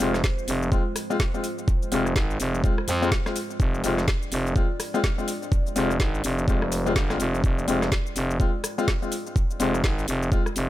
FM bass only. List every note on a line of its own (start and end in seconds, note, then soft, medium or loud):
0.00 0.22 F1 loud
0.48 0.70 F1 loud
1.92 2.14 F1 loud
2.16 2.38 G#1 loud
2.40 2.62 F1 loud
2.88 3.10 F2 loud
3.60 3.82 F1 loud
3.84 4.06 F1 loud
4.32 4.54 F1 loud
5.76 5.98 F1 loud
6.00 6.22 G#1 loud
6.24 6.46 F1 loud
6.48 6.94 F1 loud
6.96 7.18 G1 loud
7.20 7.42 F1 loud
7.44 7.66 F1 loud
7.68 7.90 F1 loud
8.16 8.38 F1 medium
9.60 9.82 F1 loud
9.84 10.06 G#1 loud
10.08 10.30 F1 loud
10.56 10.69 F1 loud